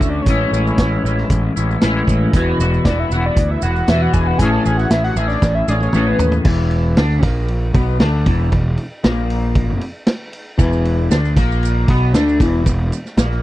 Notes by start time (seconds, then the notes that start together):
Already playing: D3 A3 C#4 F#4 E5
0.00 D2, kick, maracas
0.09 D5
0.22 A1 C#5, closed hi-hat
0.26 A2 E3 G#3 C#4 E4, kick, maracas
0.52 A1 C#4 E4, maracas
0.56 G#3
0.67 maracas
0.77 A1 E3 G#3 C#4, kick, snare, closed hi-hat, maracas
0.82 E4
1.04 A1 G#3 C#4 E4, maracas
1.17 snare
1.29 A1, kick, closed hi-hat, maracas
1.56 A1 G#3 C#4 E4, maracas
1.71 maracas
1.81 A1 A2 E3 G#3 C#4 E4, snare, closed hi-hat, maracas
2.07 A1, kick, maracas
2.33 E1 E2 B2 E3 B3 E4 F#4, kick, closed hi-hat, maracas
2.59 E1 B3 E4 F#4, maracas
2.63 E3
2.74 maracas
2.85 E1 E3 B3 E4 D5, kick, snare, closed hi-hat, maracas
2.89 F#4
3.00 E5
3.11 E1 B3 E4 F#4 F#5, maracas
3.16 E3
3.26 D5
3.36 D2, kick, closed hi-hat, maracas
3.51 E5
3.62 E1 E3 B3 E4 F#4 F#5, maracas
3.76 maracas
3.88 E2 B2 E3 B3 E4 F#4 E5, snare, closed hi-hat, maracas
4.02 F#5
4.13 E1 G#5, kick, maracas
4.27 F#5
4.38 A1 A2 E3 A3 C#4 G#5, kick, closed hi-hat, maracas
4.43 G#4
4.51 A5
4.66 A1 A3 C#4 G#4 G#5, maracas
4.77 F#5, snare, maracas
4.90 A1 E3 A3 C#4 G#4 E5, snare, closed hi-hat, maracas
5.04 F#5
5.16 A1 A3 C#4 G#4 E5, maracas
5.28 D5, snare, maracas
5.42 A1, kick, snare, maracas
5.55 E5
5.68 A1 A3 C#4 G#4 D5, high tom, maracas
5.80 C#5, high tom, maracas
5.93 A1 A2 E3 A3 C#4 G#4, mid tom, maracas
6.08 B4
6.19 D#2, floor tom, maracas
6.32 floor tom, maracas
6.45 E1 E2 E3, kick, crash
6.71 ride
6.97 D2 D3 D4, snare, ride
7.10 snare
7.22 A#1 A#2 A#3, kick, ride
7.48 ride
7.74 B1 B2 B3, kick, ride
8.00 D2 D3 D4, snare, ride
8.26 E1 E2 E3, kick, ride
8.52 E1 E2, kick, ride
8.77 ride
9.04 A#1 A#2 A#3, snare, ride
9.30 ride
9.55 kick, ride
9.81 ride
10.07 snare, ride
10.33 ride
10.58 E1 E2 E3, kick, ride, maracas
10.73 maracas
10.85 ride
11.11 D2 D3 D4, snare, ride, maracas
11.24 snare, maracas
11.36 A#1 A#2 A#3, kick, ride, maracas
11.52 maracas
11.63 ride, maracas
11.88 B1 B2 B3, kick, ride
12.14 D2 D3 D4, snare, ride, maracas
12.29 maracas
12.40 E1 E2 E3, kick, ride, maracas
12.66 E1 E2, kick, ride, maracas
12.92 ride, maracas
13.05 snare, maracas
13.17 A#1 A#2 A#3, snare, ride, maracas
13.31 snare